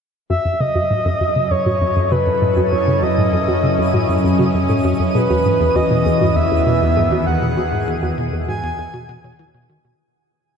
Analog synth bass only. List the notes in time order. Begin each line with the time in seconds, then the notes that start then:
0.30 F#2
0.45 F#2
0.60 C#3
0.75 F#2
0.90 A2
1.05 F#2
1.20 F#2
1.36 C#3
1.51 F#2
1.66 A2
1.81 F#2
1.96 F#2
2.11 C#3
2.27 F#2
2.42 A2
2.57 F#2
2.72 F#2
2.87 C#3
3.03 F#2
3.18 A2
3.33 F#2
3.48 F#2
3.63 C#3
3.78 F#2
3.94 A2
4.09 F#2
4.24 F#2
4.39 C#3
4.54 F#2
4.69 A2
4.84 F#2
4.99 F#2
5.15 B2
5.30 E2
5.45 G#2
5.60 E2
5.75 E2
5.91 B2
6.06 E2
6.21 G#2
6.36 E2
6.51 E2
6.66 B2
6.82 E2
6.97 G#2
7.12 E2
7.27 E2
7.42 B2
7.57 E2
7.72 G#2
7.87 E2
8.03 E2
8.18 B2
8.33 E2
8.48 G#2
8.63 E2
8.78 E2
8.93 B2
9.09 B2
9.24 B2
9.39 E3
9.54 B2
9.69 D#3
9.85 B2